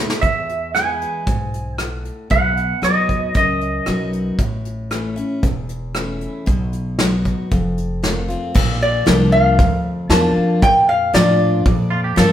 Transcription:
0.00 0.21 D#2 medium
0.00 0.17 B2 medium
0.00 0.21 G#3 medium
0.00 0.21 B3 medium
0.00 0.21 E4 medium
0.10 snare loud
0.22 1.21 E2 medium
0.22 1.04 E2 medium
0.22 0.74 E5 medium
0.22 kick medium
0.22 closed hi-hat medium
0.49 closed hi-hat medium
0.74 1.24 E3 soft
0.74 1.25 G#3 medium
0.74 1.25 B3 medium
0.74 1.25 E4 medium
0.74 1.82 G#5 medium
0.74 cross-stick loud
0.74 closed hi-hat medium
1.01 closed hi-hat medium
1.26 2.08 B1 medium
1.26 1.76 G#2 medium
1.26 kick medium
1.26 closed hi-hat medium
1.54 closed hi-hat medium
1.78 2.29 A2 medium
1.78 2.31 F#5 medium
1.78 cross-stick loud
1.78 closed hi-hat medium
2.05 closed hi-hat soft
2.30 2.72 B1 medium
2.30 3.30 B2 medium
2.30 2.80 F#5 medium
2.30 kick medium
2.30 closed hi-hat medium
2.57 closed hi-hat soft
2.82 3.27 D#2 medium
2.82 3.32 F#3 soft
2.82 3.32 B3 medium
2.82 3.33 D#4 medium
2.82 3.33 F#4 medium
2.82 3.36 D#5 medium
2.82 cross-stick loud
2.82 closed hi-hat medium
3.09 kick medium
3.09 closed hi-hat medium
3.35 3.79 C#2 medium
3.35 4.34 F#2 medium
3.35 4.10 D#5 medium
3.35 kick loud
3.35 closed hi-hat medium
3.61 closed hi-hat soft
3.86 4.31 B1 medium
3.86 4.36 F#3 medium
3.86 4.37 B3 medium
3.86 4.37 D#4 medium
3.86 4.37 F#4 medium
3.86 cross-stick loud
3.86 closed hi-hat medium
4.13 closed hi-hat soft
4.38 5.20 A1 medium
4.38 5.38 A2 medium
4.38 kick medium
4.38 closed hi-hat medium
4.65 closed hi-hat medium
4.91 5.16 E3 medium
4.91 5.16 A3 medium
4.91 5.16 C#4 medium
4.91 5.15 E4 medium
4.91 cross-stick loud
4.91 closed hi-hat medium
5.16 5.43 C#4 medium
5.16 5.42 E4 medium
5.16 closed hi-hat medium
5.43 6.25 E1 medium
5.43 6.42 E2 medium
5.43 kick medium
5.43 closed hi-hat medium
5.69 closed hi-hat medium
5.94 6.44 E3 medium
5.94 6.45 A3 medium
5.94 6.45 C#4 soft
5.94 6.46 E4 medium
5.94 cross-stick loud
5.94 closed hi-hat medium
6.21 closed hi-hat medium
6.46 7.28 B1 medium
6.46 7.46 B2 medium
6.46 kick medium
6.46 closed hi-hat medium
6.73 closed hi-hat medium
6.99 7.49 F#3 medium
6.99 7.49 B3 soft
6.99 7.49 D#4 medium
6.99 7.50 F#4 medium
6.99 snare loud
6.99 closed hi-hat medium
7.25 kick medium
7.25 closed hi-hat soft
7.51 8.33 F1 medium
7.51 8.50 F2 medium
7.51 kick medium
7.51 closed hi-hat medium
7.78 closed hi-hat medium
8.03 8.28 D#3 medium
8.03 8.28 A3 medium
8.03 8.29 C4 soft
8.03 8.27 F4 medium
8.03 snare loud
8.03 closed hi-hat medium
8.28 8.55 C4 soft
8.28 8.54 F4 medium
8.28 closed hi-hat medium
8.55 9.06 A#1 loud
8.55 9.53 A#2 loud
8.55 kick loud
8.55 crash loud
8.82 9.35 D5 medium
9.06 9.58 C2 medium
9.06 9.56 F3 medium
9.06 9.56 A#3 medium
9.06 9.57 D4 medium
9.06 9.57 F4 medium
9.06 snare loud
9.06 open hi-hat medium
9.32 10.13 F5 loud
9.59 10.09 D2 medium
9.59 10.58 F2 medium
9.59 kick loud
9.59 open hi-hat soft
10.09 10.34 E2 loud
10.09 10.60 F3 medium
10.09 10.60 A#3 medium
10.09 10.60 D4 loud
10.09 10.60 F4 loud
10.09 10.62 A5 loud
10.09 snare loud
10.09 open hi-hat medium
10.36 muted upright bass stroke soft
10.62 11.12 F2 loud
10.62 11.61 A#2 loud
10.62 10.88 G5 loud
10.62 kick loud
10.62 open hi-hat medium
10.89 11.13 F5 medium
11.13 11.64 A2 loud
11.13 11.63 F3 medium
11.13 11.64 D4 medium
11.13 11.64 F4 loud
11.13 12.32 D5 medium
11.13 snare loud
11.13 open hi-hat medium
11.66 12.32 F2 medium
11.66 12.16 A#2 medium
11.66 kick loud
11.66 open hi-hat soft
11.90 12.04 F4 medium
12.04 12.17 G4 medium
12.16 12.32 G2 loud
12.16 12.32 F3 loud
12.16 12.32 A#3 loud
12.16 12.32 D4 loud
12.16 12.32 F4 loud
12.16 12.32 A4 loud
12.16 snare loud
12.16 open hi-hat medium

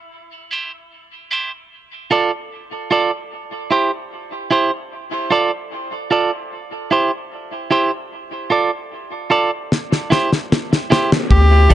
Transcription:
0.51 0.70 E4 medium
0.51 0.71 G4 medium
0.51 0.71 C5 medium
1.31 1.50 E4 medium
1.31 1.51 G4 medium
1.31 1.51 C5 medium
2.11 2.30 F4 medium
2.11 2.30 A4 medium
2.11 2.31 D5 medium
2.91 3.10 F4 medium
2.91 3.11 A4 medium
2.91 3.11 D5 medium
3.71 3.90 E4 medium
3.71 3.90 G4 medium
3.71 3.91 C5 medium
4.51 4.70 E4 medium
4.51 4.70 G4 medium
4.51 4.71 C5 loud
5.31 5.50 F4 medium
5.31 5.50 A4 medium
5.31 5.51 D5 medium
6.11 6.30 F4 medium
6.11 6.30 A4 medium
6.11 6.31 D5 medium
6.91 7.10 E4 medium
6.91 7.11 G4 medium
6.91 7.11 C5 medium
7.71 7.90 E4 medium
7.71 7.90 G4 medium
7.71 7.91 C5 loud
8.50 8.70 F4 medium
8.50 8.70 A4 medium
8.50 8.70 D5 medium
9.30 9.49 F4 medium
9.30 9.50 A4 medium
9.30 9.50 D5 medium
9.72 snare soft
9.92 snare medium
10.10 10.30 E4 medium
10.10 10.30 G4 medium
10.10 10.30 C5 medium
10.10 snare medium
10.32 snare medium
10.52 snare medium
10.73 snare medium
10.90 11.10 E4 medium
10.90 11.10 G4 loud
10.90 11.10 C5 medium
10.90 snare medium
11.12 snare medium
11.31 11.68 D2 loud
11.31 11.74 G4 loud
11.31 kick loud
11.70 11.74 C2 loud
11.70 11.74 F4 medium
11.70 11.74 A4 medium
11.70 kick medium
11.70 closed hi-hat medium

